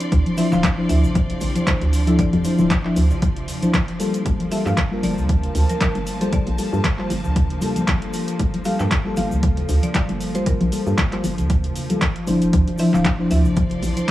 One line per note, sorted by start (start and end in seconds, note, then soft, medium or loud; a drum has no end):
0.00 0.35 F3 medium
0.00 3.96 F3 medium
0.00 14.11 F3 medium
0.00 3.96 C4 medium
0.00 0.35 D4 medium
0.00 3.96 D4 medium
0.00 0.35 E4 medium
0.00 0.36 C5 medium
0.00 5.66 D5 medium
0.00 4.67 C6 medium
0.00 closed hi-hat medium
0.00 cabasa medium
0.12 0.21 D2 loud
0.12 3.96 G4 medium
0.12 kick loud
0.12 closed hi-hat medium
0.12 cabasa soft
0.26 closed hi-hat soft
0.26 muted conga medium
0.26 high conga medium
0.37 0.50 F3 loud
0.37 0.50 D4 medium
0.37 0.50 E4 medium
0.37 0.50 C5 loud
0.37 0.53 E5 loud
0.37 open hi-hat loud
0.37 cabasa loud
0.52 0.60 D1 loud
0.52 0.66 F3 medium
0.52 0.66 D4 medium
0.52 0.66 E4 medium
0.52 0.66 C5 loud
0.52 0.91 F5 loud
0.52 clap soft
0.52 cabasa medium
0.64 kick loud
0.64 clap loud
0.64 closed hi-hat medium
0.64 cabasa soft
0.77 2.03 F3 medium
0.77 2.04 D4 medium
0.77 2.04 E4 medium
0.77 2.04 C5 medium
0.89 1.05 D2 loud
0.89 1.58 E5 loud
0.89 open hi-hat loud
0.89 muted conga medium
0.89 high conga medium
0.89 cabasa loud
1.03 1.35 A1 medium
1.03 low conga medium
1.03 cabasa medium
1.15 kick loud
1.15 closed hi-hat medium
1.15 cabasa soft
1.30 closed hi-hat soft
1.30 muted conga medium
1.30 low conga medium
1.41 1.51 A1 medium
1.41 open hi-hat loud
1.41 low conga medium
1.41 cabasa medium
1.55 1.66 C5 medium
1.55 closed hi-hat medium
1.55 high conga loud
1.55 cabasa medium
1.67 2.09 C5 loud
1.67 kick loud
1.67 clap loud
1.67 closed hi-hat medium
1.67 cabasa soft
1.81 2.25 D2 medium
1.81 closed hi-hat soft
1.93 open hi-hat medium
1.93 cabasa loud
2.07 2.31 F3 medium
2.07 2.31 D4 medium
2.07 2.31 E4 medium
2.07 2.19 A4 medium
2.07 2.31 E5 loud
2.07 closed hi-hat soft
2.07 muted conga medium
2.07 cabasa medium
2.19 3.18 D5 loud
2.19 kick loud
2.19 closed hi-hat medium
2.19 cabasa soft
2.33 2.41 F2 medium
2.33 closed hi-hat soft
2.33 muted conga medium
2.33 high conga loud
2.44 2.55 F3 medium
2.44 2.55 D4 medium
2.44 2.56 E4 medium
2.44 2.56 C5 medium
2.44 open hi-hat loud
2.44 cabasa loud
2.58 2.67 D1 loud
2.58 2.73 F3 medium
2.58 2.73 D4 medium
2.58 2.73 E4 medium
2.58 2.73 C5 loud
2.58 cabasa medium
2.70 kick loud
2.70 clap loud
2.70 closed hi-hat medium
2.70 cabasa soft
2.84 2.99 F3 medium
2.84 2.99 D4 medium
2.84 2.99 E4 medium
2.84 2.99 E5 medium
2.84 clap soft
2.96 3.12 D2 loud
2.96 open hi-hat medium
2.96 muted conga medium
2.96 high conga medium
2.96 cabasa medium
3.10 3.42 A1 medium
3.10 low conga medium
3.10 cabasa medium
3.22 kick loud
3.22 closed hi-hat medium
3.22 cabasa soft
3.37 closed hi-hat soft
3.37 low conga medium
3.48 open hi-hat loud
3.48 low conga medium
3.48 cabasa medium
3.62 3.76 F3 medium
3.62 3.76 D4 medium
3.62 3.76 E4 medium
3.62 3.77 C5 medium
3.62 closed hi-hat soft
3.62 high conga loud
3.62 cabasa soft
3.74 kick loud
3.74 clap loud
3.74 closed hi-hat medium
3.74 cabasa soft
3.88 closed hi-hat soft
3.99 14.11 F3 medium
3.99 4.49 G3 medium
3.99 4.49 A#3 medium
3.99 12.49 A#3 medium
3.99 12.49 D4 medium
3.99 4.49 F4 medium
3.99 4.49 A4 loud
3.99 8.10 A5 medium
3.99 open hi-hat medium
3.99 cabasa loud
4.14 closed hi-hat soft
4.14 cabasa medium
4.26 4.35 G1 loud
4.26 kick loud
4.26 closed hi-hat medium
4.26 cabasa soft
4.40 closed hi-hat soft
4.40 muted conga medium
4.40 high conga medium
4.51 4.63 G3 loud
4.51 4.64 A#3 medium
4.51 4.64 F4 medium
4.51 4.64 A4 loud
4.51 4.66 E5 loud
4.51 open hi-hat loud
4.51 cabasa medium
4.56 12.53 A#3 medium
4.65 4.74 G2 loud
4.65 4.80 G3 medium
4.65 4.80 A#3 medium
4.65 4.80 F4 medium
4.65 4.80 A4 medium
4.65 5.01 F5 loud
4.65 clap soft
4.65 cabasa medium
4.77 kick loud
4.77 clap loud
4.77 closed hi-hat medium
4.77 cabasa soft
4.91 6.17 G3 medium
4.91 6.17 A#3 medium
4.91 6.18 F4 medium
4.91 6.18 A#4 medium
4.99 9.31 A5 medium
5.03 5.19 G1 loud
5.03 5.72 D5 loud
5.03 open hi-hat loud
5.03 muted conga medium
5.03 high conga medium
5.03 cabasa medium
5.18 5.49 D2 medium
5.18 low conga medium
5.18 cabasa medium
5.29 kick loud
5.29 closed hi-hat medium
5.29 cabasa soft
5.43 closed hi-hat soft
5.43 muted conga soft
5.43 low conga medium
5.55 5.65 D2 medium
5.55 open hi-hat loud
5.55 low conga medium
5.55 cabasa medium
5.69 5.80 A#4 medium
5.69 closed hi-hat soft
5.69 high conga medium
5.69 cabasa medium
5.81 6.22 A#4 medium
5.81 kick loud
5.81 clap loud
5.81 closed hi-hat medium
5.81 cabasa soft
5.95 6.39 G1 medium
5.95 closed hi-hat soft
6.07 open hi-hat medium
6.07 cabasa loud
6.21 6.45 G3 medium
6.21 6.45 A#3 medium
6.21 6.45 F4 medium
6.21 6.33 A4 medium
6.21 6.45 C5 loud
6.21 closed hi-hat soft
6.21 muted conga soft
6.21 cabasa soft
6.33 7.32 D5 loud
6.33 kick loud
6.33 closed hi-hat medium
6.33 cabasa soft
6.46 6.55 A#1 loud
6.46 closed hi-hat soft
6.46 muted conga medium
6.46 high conga medium
6.58 6.69 G3 medium
6.58 6.69 A#3 medium
6.58 6.70 F4 medium
6.58 6.70 A4 medium
6.58 open hi-hat loud
6.58 cabasa medium
6.72 6.81 G2 loud
6.72 6.86 G3 medium
6.72 6.87 A#3 medium
6.72 6.87 F4 medium
6.72 6.87 A4 medium
6.72 cabasa soft
6.84 kick loud
6.84 clap loud
6.84 closed hi-hat medium
6.84 cabasa soft
6.98 7.12 G3 medium
6.98 7.12 A#3 medium
6.98 7.13 F4 medium
6.98 7.13 C5 medium
6.98 clap soft
7.10 7.26 G1 loud
7.10 open hi-hat medium
7.10 muted conga medium
7.10 high conga medium
7.10 cabasa medium
7.24 7.56 D2 medium
7.24 low conga medium
7.24 cabasa medium
7.36 kick loud
7.36 closed hi-hat medium
7.36 cabasa soft
7.50 closed hi-hat soft
7.50 low conga medium
7.61 8.62 G3 medium
7.61 8.62 A#3 medium
7.61 8.63 F4 medium
7.61 8.63 A4 loud
7.61 open hi-hat loud
7.61 low conga medium
7.61 cabasa medium
7.76 closed hi-hat medium
7.76 high conga medium
7.76 cabasa medium
7.88 kick loud
7.88 clap loud
7.88 closed hi-hat medium
7.88 cabasa soft
8.02 closed hi-hat soft
8.13 open hi-hat medium
8.13 cabasa medium
8.28 closed hi-hat soft
8.28 cabasa soft
8.39 8.49 G1 loud
8.39 kick loud
8.39 closed hi-hat medium
8.39 cabasa soft
8.54 closed hi-hat soft
8.54 muted conga medium
8.54 high conga loud
8.65 8.77 G3 loud
8.65 8.78 A#3 medium
8.65 8.78 F4 medium
8.65 8.78 A4 loud
8.65 8.79 F5 loud
8.65 open hi-hat loud
8.65 cabasa loud
8.79 8.88 G2 loud
8.79 8.93 G3 medium
8.79 8.94 A#3 medium
8.79 8.94 F4 medium
8.79 8.94 A4 loud
8.79 9.18 G5 loud
8.79 clap soft
8.79 cabasa medium
8.91 kick loud
8.91 clap loud
8.91 closed hi-hat medium
8.91 cabasa soft
9.05 10.31 G3 medium
9.05 10.31 A#3 medium
9.05 10.32 F4 medium
9.05 10.32 A4 loud
9.17 9.33 G1 loud
9.17 9.85 F5 loud
9.17 open hi-hat medium
9.17 muted conga medium
9.17 high conga medium
9.17 cabasa medium
9.31 9.63 D2 medium
9.31 low conga medium
9.31 cabasa medium
9.43 kick loud
9.43 closed hi-hat medium
9.43 cabasa soft
9.57 closed hi-hat soft
9.57 muted conga medium
9.57 low conga medium
9.69 9.78 D2 medium
9.69 open hi-hat loud
9.69 low conga medium
9.69 cabasa medium
9.83 9.93 D5 medium
9.83 closed hi-hat medium
9.83 high conga medium
9.83 cabasa medium
9.95 10.32 D5 loud
9.95 kick loud
9.95 clap loud
9.95 closed hi-hat medium
9.95 cabasa soft
10.09 10.53 G1 medium
10.09 closed hi-hat soft
10.21 open hi-hat medium
10.21 cabasa medium
10.34 10.59 G3 medium
10.34 10.59 A#3 medium
10.34 10.59 F4 medium
10.34 10.47 C5 medium
10.34 10.59 C5 loud
10.34 closed hi-hat medium
10.34 muted conga medium
10.34 cabasa soft
10.46 11.46 A#4 medium
10.46 kick loud
10.46 closed hi-hat medium
10.46 cabasa soft
10.61 10.68 A#1 loud
10.61 closed hi-hat soft
10.61 muted conga medium
10.61 high conga medium
10.72 10.83 G3 medium
10.72 10.83 A#3 medium
10.72 10.83 F4 medium
10.72 10.83 A4 medium
10.72 open hi-hat loud
10.72 cabasa loud
10.86 10.94 G2 loud
10.86 11.00 G3 medium
10.86 11.00 A#3 medium
10.86 11.01 F4 medium
10.86 11.01 A4 loud
10.86 cabasa soft
10.98 kick loud
10.98 clap loud
10.98 closed hi-hat medium
10.98 cabasa soft
11.12 11.26 G3 medium
11.12 11.26 A#3 medium
11.12 11.26 F4 medium
11.12 11.27 C5 medium
11.12 clap soft
11.12 closed hi-hat soft
11.24 11.40 G1 loud
11.24 open hi-hat medium
11.24 muted conga medium
11.24 high conga medium
11.24 cabasa medium
11.38 11.69 D2 medium
11.38 closed hi-hat soft
11.38 low conga medium
11.38 cabasa medium
11.50 kick loud
11.50 closed hi-hat medium
11.50 cabasa soft
11.64 closed hi-hat soft
11.64 low conga medium
11.76 open hi-hat loud
11.76 low conga medium
11.76 cabasa medium
11.90 12.04 G3 medium
11.90 12.04 A#3 medium
11.90 12.04 F4 medium
11.90 12.04 A4 medium
11.90 closed hi-hat medium
11.90 high conga loud
11.90 cabasa soft
12.01 kick loud
12.01 clap loud
12.01 closed hi-hat medium
12.01 cabasa soft
12.16 closed hi-hat soft
12.27 12.43 G1 loud
12.27 12.76 F3 medium
12.27 12.76 D4 medium
12.27 12.76 E4 medium
12.27 12.77 C5 loud
12.27 open hi-hat medium
12.27 cabasa medium
12.42 12.49 D1 loud
12.42 closed hi-hat medium
12.42 cabasa soft
12.53 12.63 D2 loud
12.53 14.11 C4 medium
12.53 14.11 D4 medium
12.53 14.11 A4 medium
12.53 kick loud
12.53 closed hi-hat medium
12.53 cabasa soft
12.68 closed hi-hat soft
12.68 muted conga medium
12.68 high conga medium
12.78 12.91 F3 medium
12.78 12.91 D4 medium
12.78 12.91 E4 medium
12.78 12.92 C5 loud
12.78 14.11 D5 medium
12.78 12.86 E5 loud
12.78 open hi-hat loud
12.78 cabasa medium
12.93 13.01 D1 loud
12.93 13.07 F3 medium
12.93 13.07 D4 medium
12.93 13.07 E4 medium
12.93 13.08 C5 medium
12.93 13.32 F5 loud
12.93 clap soft
12.93 cabasa medium
13.05 kick loud
13.05 clap loud
13.05 closed hi-hat medium
13.05 cabasa soft
13.18 14.11 F3 medium
13.18 14.11 D4 medium
13.18 14.11 E4 medium
13.18 14.11 C5 loud
13.30 13.47 D2 loud
13.30 13.99 E5 loud
13.30 open hi-hat medium
13.30 muted conga medium
13.30 high conga medium
13.30 cabasa medium
13.45 13.76 A1 medium
13.45 low conga medium
13.45 cabasa soft
13.56 kick loud
13.56 closed hi-hat medium
13.56 cabasa soft
13.64 14.11 C6 loud
13.70 closed hi-hat soft
13.70 muted conga medium
13.70 low conga medium
13.82 13.92 A1 medium
13.82 open hi-hat loud
13.82 low conga medium
13.82 cabasa medium
13.96 14.07 C5 medium
13.96 closed hi-hat medium
13.96 high conga medium
13.96 cabasa soft